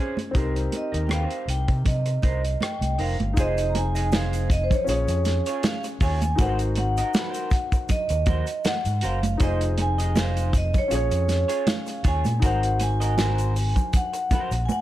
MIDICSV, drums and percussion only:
0, 0, Header, 1, 2, 480
1, 0, Start_track
1, 0, Tempo, 755668
1, 219, Time_signature, 4, 2, 24, 8
1, 9409, End_track
2, 0, Start_track
2, 0, Title_t, "Drums"
2, 108, Note_on_c, 9, 63, 69
2, 119, Note_on_c, 9, 42, 39
2, 171, Note_off_c, 9, 63, 0
2, 182, Note_off_c, 9, 42, 0
2, 214, Note_on_c, 9, 62, 32
2, 221, Note_on_c, 9, 36, 104
2, 221, Note_on_c, 9, 42, 82
2, 277, Note_off_c, 9, 62, 0
2, 285, Note_off_c, 9, 36, 0
2, 285, Note_off_c, 9, 42, 0
2, 357, Note_on_c, 9, 42, 48
2, 421, Note_off_c, 9, 42, 0
2, 460, Note_on_c, 9, 42, 66
2, 461, Note_on_c, 9, 62, 44
2, 523, Note_off_c, 9, 42, 0
2, 524, Note_off_c, 9, 62, 0
2, 597, Note_on_c, 9, 42, 50
2, 661, Note_off_c, 9, 42, 0
2, 692, Note_on_c, 9, 63, 64
2, 704, Note_on_c, 9, 42, 80
2, 705, Note_on_c, 9, 37, 88
2, 756, Note_off_c, 9, 63, 0
2, 767, Note_off_c, 9, 42, 0
2, 769, Note_off_c, 9, 37, 0
2, 829, Note_on_c, 9, 42, 42
2, 893, Note_off_c, 9, 42, 0
2, 944, Note_on_c, 9, 42, 74
2, 1007, Note_off_c, 9, 42, 0
2, 1069, Note_on_c, 9, 42, 43
2, 1070, Note_on_c, 9, 36, 77
2, 1132, Note_off_c, 9, 42, 0
2, 1133, Note_off_c, 9, 36, 0
2, 1173, Note_on_c, 9, 64, 58
2, 1179, Note_on_c, 9, 42, 76
2, 1181, Note_on_c, 9, 36, 83
2, 1237, Note_off_c, 9, 64, 0
2, 1242, Note_off_c, 9, 42, 0
2, 1245, Note_off_c, 9, 36, 0
2, 1306, Note_on_c, 9, 42, 44
2, 1370, Note_off_c, 9, 42, 0
2, 1412, Note_on_c, 9, 62, 42
2, 1418, Note_on_c, 9, 42, 63
2, 1419, Note_on_c, 9, 36, 73
2, 1476, Note_off_c, 9, 62, 0
2, 1481, Note_off_c, 9, 42, 0
2, 1482, Note_off_c, 9, 36, 0
2, 1554, Note_on_c, 9, 42, 48
2, 1617, Note_off_c, 9, 42, 0
2, 1655, Note_on_c, 9, 63, 72
2, 1665, Note_on_c, 9, 42, 71
2, 1670, Note_on_c, 9, 37, 106
2, 1719, Note_off_c, 9, 63, 0
2, 1728, Note_off_c, 9, 42, 0
2, 1734, Note_off_c, 9, 37, 0
2, 1787, Note_on_c, 9, 63, 46
2, 1792, Note_on_c, 9, 42, 45
2, 1850, Note_off_c, 9, 63, 0
2, 1856, Note_off_c, 9, 42, 0
2, 1897, Note_on_c, 9, 46, 46
2, 1960, Note_off_c, 9, 46, 0
2, 2032, Note_on_c, 9, 63, 65
2, 2033, Note_on_c, 9, 42, 39
2, 2095, Note_off_c, 9, 63, 0
2, 2096, Note_off_c, 9, 42, 0
2, 2140, Note_on_c, 9, 82, 65
2, 2142, Note_on_c, 9, 42, 98
2, 2142, Note_on_c, 9, 62, 36
2, 2143, Note_on_c, 9, 36, 114
2, 2204, Note_off_c, 9, 82, 0
2, 2205, Note_off_c, 9, 42, 0
2, 2205, Note_off_c, 9, 62, 0
2, 2206, Note_off_c, 9, 36, 0
2, 2271, Note_on_c, 9, 82, 43
2, 2274, Note_on_c, 9, 42, 55
2, 2335, Note_off_c, 9, 82, 0
2, 2338, Note_off_c, 9, 42, 0
2, 2382, Note_on_c, 9, 42, 78
2, 2382, Note_on_c, 9, 62, 53
2, 2445, Note_off_c, 9, 42, 0
2, 2445, Note_off_c, 9, 62, 0
2, 2510, Note_on_c, 9, 82, 48
2, 2518, Note_on_c, 9, 42, 58
2, 2574, Note_off_c, 9, 82, 0
2, 2581, Note_off_c, 9, 42, 0
2, 2616, Note_on_c, 9, 82, 66
2, 2621, Note_on_c, 9, 63, 70
2, 2624, Note_on_c, 9, 42, 85
2, 2625, Note_on_c, 9, 38, 104
2, 2679, Note_off_c, 9, 82, 0
2, 2684, Note_off_c, 9, 63, 0
2, 2687, Note_off_c, 9, 42, 0
2, 2688, Note_off_c, 9, 38, 0
2, 2751, Note_on_c, 9, 42, 46
2, 2753, Note_on_c, 9, 82, 57
2, 2815, Note_off_c, 9, 42, 0
2, 2816, Note_off_c, 9, 82, 0
2, 2857, Note_on_c, 9, 36, 91
2, 2862, Note_on_c, 9, 82, 47
2, 2866, Note_on_c, 9, 42, 79
2, 2921, Note_off_c, 9, 36, 0
2, 2926, Note_off_c, 9, 82, 0
2, 2929, Note_off_c, 9, 42, 0
2, 2987, Note_on_c, 9, 64, 72
2, 2991, Note_on_c, 9, 36, 89
2, 2995, Note_on_c, 9, 42, 49
2, 2995, Note_on_c, 9, 82, 44
2, 3051, Note_off_c, 9, 64, 0
2, 3054, Note_off_c, 9, 36, 0
2, 3058, Note_off_c, 9, 42, 0
2, 3058, Note_off_c, 9, 82, 0
2, 3095, Note_on_c, 9, 82, 59
2, 3104, Note_on_c, 9, 42, 79
2, 3158, Note_off_c, 9, 82, 0
2, 3168, Note_off_c, 9, 42, 0
2, 3227, Note_on_c, 9, 82, 52
2, 3229, Note_on_c, 9, 42, 47
2, 3290, Note_off_c, 9, 82, 0
2, 3293, Note_off_c, 9, 42, 0
2, 3334, Note_on_c, 9, 82, 47
2, 3336, Note_on_c, 9, 42, 72
2, 3342, Note_on_c, 9, 62, 49
2, 3345, Note_on_c, 9, 38, 35
2, 3397, Note_off_c, 9, 82, 0
2, 3399, Note_off_c, 9, 42, 0
2, 3406, Note_off_c, 9, 62, 0
2, 3408, Note_off_c, 9, 38, 0
2, 3467, Note_on_c, 9, 82, 43
2, 3470, Note_on_c, 9, 42, 57
2, 3530, Note_off_c, 9, 82, 0
2, 3533, Note_off_c, 9, 42, 0
2, 3577, Note_on_c, 9, 42, 82
2, 3578, Note_on_c, 9, 82, 69
2, 3581, Note_on_c, 9, 63, 74
2, 3582, Note_on_c, 9, 38, 112
2, 3641, Note_off_c, 9, 42, 0
2, 3641, Note_off_c, 9, 82, 0
2, 3645, Note_off_c, 9, 63, 0
2, 3646, Note_off_c, 9, 38, 0
2, 3708, Note_on_c, 9, 82, 49
2, 3711, Note_on_c, 9, 42, 51
2, 3772, Note_off_c, 9, 82, 0
2, 3774, Note_off_c, 9, 42, 0
2, 3814, Note_on_c, 9, 46, 54
2, 3816, Note_on_c, 9, 36, 94
2, 3820, Note_on_c, 9, 82, 47
2, 3877, Note_off_c, 9, 46, 0
2, 3880, Note_off_c, 9, 36, 0
2, 3884, Note_off_c, 9, 82, 0
2, 3947, Note_on_c, 9, 82, 50
2, 3949, Note_on_c, 9, 42, 45
2, 3949, Note_on_c, 9, 63, 67
2, 4011, Note_off_c, 9, 82, 0
2, 4012, Note_off_c, 9, 63, 0
2, 4013, Note_off_c, 9, 42, 0
2, 4055, Note_on_c, 9, 82, 68
2, 4056, Note_on_c, 9, 42, 97
2, 4057, Note_on_c, 9, 36, 117
2, 4063, Note_on_c, 9, 62, 35
2, 4119, Note_off_c, 9, 42, 0
2, 4119, Note_off_c, 9, 82, 0
2, 4121, Note_off_c, 9, 36, 0
2, 4126, Note_off_c, 9, 62, 0
2, 4186, Note_on_c, 9, 42, 54
2, 4186, Note_on_c, 9, 82, 42
2, 4249, Note_off_c, 9, 42, 0
2, 4250, Note_off_c, 9, 82, 0
2, 4291, Note_on_c, 9, 42, 80
2, 4304, Note_on_c, 9, 62, 51
2, 4354, Note_off_c, 9, 42, 0
2, 4367, Note_off_c, 9, 62, 0
2, 4428, Note_on_c, 9, 82, 48
2, 4432, Note_on_c, 9, 42, 58
2, 4491, Note_off_c, 9, 82, 0
2, 4495, Note_off_c, 9, 42, 0
2, 4533, Note_on_c, 9, 82, 65
2, 4539, Note_on_c, 9, 42, 81
2, 4539, Note_on_c, 9, 63, 76
2, 4540, Note_on_c, 9, 38, 103
2, 4597, Note_off_c, 9, 82, 0
2, 4602, Note_off_c, 9, 63, 0
2, 4603, Note_off_c, 9, 42, 0
2, 4604, Note_off_c, 9, 38, 0
2, 4663, Note_on_c, 9, 82, 56
2, 4665, Note_on_c, 9, 42, 48
2, 4727, Note_off_c, 9, 82, 0
2, 4728, Note_off_c, 9, 42, 0
2, 4768, Note_on_c, 9, 82, 48
2, 4773, Note_on_c, 9, 36, 97
2, 4781, Note_on_c, 9, 42, 76
2, 4832, Note_off_c, 9, 82, 0
2, 4836, Note_off_c, 9, 36, 0
2, 4845, Note_off_c, 9, 42, 0
2, 4905, Note_on_c, 9, 36, 87
2, 4905, Note_on_c, 9, 82, 45
2, 4906, Note_on_c, 9, 42, 45
2, 4968, Note_off_c, 9, 36, 0
2, 4968, Note_off_c, 9, 82, 0
2, 4969, Note_off_c, 9, 42, 0
2, 5009, Note_on_c, 9, 82, 61
2, 5011, Note_on_c, 9, 64, 66
2, 5012, Note_on_c, 9, 42, 78
2, 5016, Note_on_c, 9, 36, 90
2, 5073, Note_off_c, 9, 82, 0
2, 5075, Note_off_c, 9, 42, 0
2, 5075, Note_off_c, 9, 64, 0
2, 5080, Note_off_c, 9, 36, 0
2, 5138, Note_on_c, 9, 42, 44
2, 5144, Note_on_c, 9, 82, 52
2, 5202, Note_off_c, 9, 42, 0
2, 5207, Note_off_c, 9, 82, 0
2, 5246, Note_on_c, 9, 42, 67
2, 5251, Note_on_c, 9, 36, 85
2, 5251, Note_on_c, 9, 82, 47
2, 5254, Note_on_c, 9, 62, 48
2, 5254, Note_on_c, 9, 64, 65
2, 5309, Note_off_c, 9, 42, 0
2, 5315, Note_off_c, 9, 36, 0
2, 5315, Note_off_c, 9, 82, 0
2, 5317, Note_off_c, 9, 62, 0
2, 5317, Note_off_c, 9, 64, 0
2, 5376, Note_on_c, 9, 82, 43
2, 5381, Note_on_c, 9, 42, 55
2, 5440, Note_off_c, 9, 82, 0
2, 5444, Note_off_c, 9, 42, 0
2, 5491, Note_on_c, 9, 82, 68
2, 5493, Note_on_c, 9, 42, 86
2, 5495, Note_on_c, 9, 63, 80
2, 5498, Note_on_c, 9, 38, 109
2, 5554, Note_off_c, 9, 82, 0
2, 5556, Note_off_c, 9, 42, 0
2, 5558, Note_off_c, 9, 63, 0
2, 5562, Note_off_c, 9, 38, 0
2, 5623, Note_on_c, 9, 42, 50
2, 5623, Note_on_c, 9, 82, 48
2, 5686, Note_off_c, 9, 42, 0
2, 5686, Note_off_c, 9, 82, 0
2, 5725, Note_on_c, 9, 42, 77
2, 5737, Note_on_c, 9, 82, 53
2, 5788, Note_off_c, 9, 42, 0
2, 5801, Note_off_c, 9, 82, 0
2, 5864, Note_on_c, 9, 42, 45
2, 5864, Note_on_c, 9, 63, 72
2, 5869, Note_on_c, 9, 82, 53
2, 5927, Note_off_c, 9, 63, 0
2, 5928, Note_off_c, 9, 42, 0
2, 5933, Note_off_c, 9, 82, 0
2, 5969, Note_on_c, 9, 42, 92
2, 5974, Note_on_c, 9, 36, 114
2, 5975, Note_on_c, 9, 62, 33
2, 5975, Note_on_c, 9, 82, 68
2, 6033, Note_off_c, 9, 42, 0
2, 6037, Note_off_c, 9, 36, 0
2, 6038, Note_off_c, 9, 62, 0
2, 6039, Note_off_c, 9, 82, 0
2, 6104, Note_on_c, 9, 42, 57
2, 6106, Note_on_c, 9, 82, 42
2, 6168, Note_off_c, 9, 42, 0
2, 6170, Note_off_c, 9, 82, 0
2, 6210, Note_on_c, 9, 42, 76
2, 6212, Note_on_c, 9, 62, 48
2, 6273, Note_off_c, 9, 42, 0
2, 6276, Note_off_c, 9, 62, 0
2, 6344, Note_on_c, 9, 82, 49
2, 6351, Note_on_c, 9, 42, 57
2, 6408, Note_off_c, 9, 82, 0
2, 6414, Note_off_c, 9, 42, 0
2, 6451, Note_on_c, 9, 63, 73
2, 6453, Note_on_c, 9, 82, 71
2, 6460, Note_on_c, 9, 42, 87
2, 6461, Note_on_c, 9, 38, 105
2, 6514, Note_off_c, 9, 63, 0
2, 6516, Note_off_c, 9, 82, 0
2, 6523, Note_off_c, 9, 42, 0
2, 6525, Note_off_c, 9, 38, 0
2, 6585, Note_on_c, 9, 42, 49
2, 6586, Note_on_c, 9, 82, 53
2, 6648, Note_off_c, 9, 42, 0
2, 6649, Note_off_c, 9, 82, 0
2, 6690, Note_on_c, 9, 36, 91
2, 6692, Note_on_c, 9, 82, 48
2, 6697, Note_on_c, 9, 42, 79
2, 6754, Note_off_c, 9, 36, 0
2, 6755, Note_off_c, 9, 82, 0
2, 6760, Note_off_c, 9, 42, 0
2, 6822, Note_on_c, 9, 82, 42
2, 6823, Note_on_c, 9, 64, 71
2, 6824, Note_on_c, 9, 36, 89
2, 6827, Note_on_c, 9, 42, 47
2, 6885, Note_off_c, 9, 82, 0
2, 6886, Note_off_c, 9, 64, 0
2, 6888, Note_off_c, 9, 36, 0
2, 6891, Note_off_c, 9, 42, 0
2, 6930, Note_on_c, 9, 82, 64
2, 6931, Note_on_c, 9, 42, 83
2, 6994, Note_off_c, 9, 82, 0
2, 6995, Note_off_c, 9, 42, 0
2, 7059, Note_on_c, 9, 82, 49
2, 7060, Note_on_c, 9, 42, 50
2, 7122, Note_off_c, 9, 82, 0
2, 7123, Note_off_c, 9, 42, 0
2, 7168, Note_on_c, 9, 62, 48
2, 7171, Note_on_c, 9, 42, 68
2, 7173, Note_on_c, 9, 82, 49
2, 7180, Note_on_c, 9, 38, 35
2, 7231, Note_off_c, 9, 62, 0
2, 7235, Note_off_c, 9, 42, 0
2, 7236, Note_off_c, 9, 82, 0
2, 7244, Note_off_c, 9, 38, 0
2, 7298, Note_on_c, 9, 82, 46
2, 7301, Note_on_c, 9, 42, 56
2, 7361, Note_off_c, 9, 82, 0
2, 7365, Note_off_c, 9, 42, 0
2, 7411, Note_on_c, 9, 42, 84
2, 7412, Note_on_c, 9, 63, 82
2, 7414, Note_on_c, 9, 82, 67
2, 7417, Note_on_c, 9, 38, 122
2, 7475, Note_off_c, 9, 42, 0
2, 7475, Note_off_c, 9, 63, 0
2, 7478, Note_off_c, 9, 82, 0
2, 7480, Note_off_c, 9, 38, 0
2, 7535, Note_on_c, 9, 82, 46
2, 7545, Note_on_c, 9, 42, 49
2, 7599, Note_off_c, 9, 82, 0
2, 7609, Note_off_c, 9, 42, 0
2, 7648, Note_on_c, 9, 42, 72
2, 7652, Note_on_c, 9, 36, 95
2, 7652, Note_on_c, 9, 82, 48
2, 7711, Note_off_c, 9, 42, 0
2, 7715, Note_off_c, 9, 82, 0
2, 7716, Note_off_c, 9, 36, 0
2, 7778, Note_on_c, 9, 82, 54
2, 7781, Note_on_c, 9, 63, 69
2, 7789, Note_on_c, 9, 42, 47
2, 7841, Note_off_c, 9, 82, 0
2, 7845, Note_off_c, 9, 63, 0
2, 7852, Note_off_c, 9, 42, 0
2, 7889, Note_on_c, 9, 62, 35
2, 7891, Note_on_c, 9, 42, 95
2, 7892, Note_on_c, 9, 82, 60
2, 7893, Note_on_c, 9, 36, 117
2, 7952, Note_off_c, 9, 62, 0
2, 7954, Note_off_c, 9, 42, 0
2, 7955, Note_off_c, 9, 82, 0
2, 7956, Note_off_c, 9, 36, 0
2, 8024, Note_on_c, 9, 42, 53
2, 8025, Note_on_c, 9, 82, 41
2, 8087, Note_off_c, 9, 42, 0
2, 8089, Note_off_c, 9, 82, 0
2, 8128, Note_on_c, 9, 42, 77
2, 8132, Note_on_c, 9, 82, 56
2, 8133, Note_on_c, 9, 62, 51
2, 8191, Note_off_c, 9, 42, 0
2, 8196, Note_off_c, 9, 82, 0
2, 8197, Note_off_c, 9, 62, 0
2, 8265, Note_on_c, 9, 82, 48
2, 8268, Note_on_c, 9, 42, 57
2, 8329, Note_off_c, 9, 82, 0
2, 8331, Note_off_c, 9, 42, 0
2, 8370, Note_on_c, 9, 63, 73
2, 8374, Note_on_c, 9, 82, 69
2, 8376, Note_on_c, 9, 42, 84
2, 8377, Note_on_c, 9, 38, 109
2, 8434, Note_off_c, 9, 63, 0
2, 8437, Note_off_c, 9, 82, 0
2, 8439, Note_off_c, 9, 42, 0
2, 8440, Note_off_c, 9, 38, 0
2, 8500, Note_on_c, 9, 42, 48
2, 8506, Note_on_c, 9, 82, 56
2, 8564, Note_off_c, 9, 42, 0
2, 8569, Note_off_c, 9, 82, 0
2, 8614, Note_on_c, 9, 82, 49
2, 8615, Note_on_c, 9, 46, 55
2, 8678, Note_off_c, 9, 46, 0
2, 8678, Note_off_c, 9, 82, 0
2, 8739, Note_on_c, 9, 64, 68
2, 8741, Note_on_c, 9, 36, 80
2, 8744, Note_on_c, 9, 42, 45
2, 8744, Note_on_c, 9, 82, 44
2, 8803, Note_off_c, 9, 64, 0
2, 8804, Note_off_c, 9, 36, 0
2, 8807, Note_off_c, 9, 42, 0
2, 8807, Note_off_c, 9, 82, 0
2, 8848, Note_on_c, 9, 82, 63
2, 8850, Note_on_c, 9, 42, 82
2, 8852, Note_on_c, 9, 36, 86
2, 8853, Note_on_c, 9, 64, 68
2, 8912, Note_off_c, 9, 82, 0
2, 8913, Note_off_c, 9, 42, 0
2, 8916, Note_off_c, 9, 36, 0
2, 8917, Note_off_c, 9, 64, 0
2, 8979, Note_on_c, 9, 42, 49
2, 8981, Note_on_c, 9, 82, 52
2, 9042, Note_off_c, 9, 42, 0
2, 9044, Note_off_c, 9, 82, 0
2, 9089, Note_on_c, 9, 36, 80
2, 9089, Note_on_c, 9, 82, 48
2, 9090, Note_on_c, 9, 42, 63
2, 9092, Note_on_c, 9, 62, 47
2, 9092, Note_on_c, 9, 64, 67
2, 9153, Note_off_c, 9, 36, 0
2, 9153, Note_off_c, 9, 82, 0
2, 9154, Note_off_c, 9, 42, 0
2, 9156, Note_off_c, 9, 62, 0
2, 9156, Note_off_c, 9, 64, 0
2, 9218, Note_on_c, 9, 82, 48
2, 9225, Note_on_c, 9, 42, 56
2, 9281, Note_off_c, 9, 82, 0
2, 9288, Note_off_c, 9, 42, 0
2, 9330, Note_on_c, 9, 63, 76
2, 9331, Note_on_c, 9, 82, 65
2, 9394, Note_off_c, 9, 63, 0
2, 9395, Note_off_c, 9, 82, 0
2, 9409, End_track
0, 0, End_of_file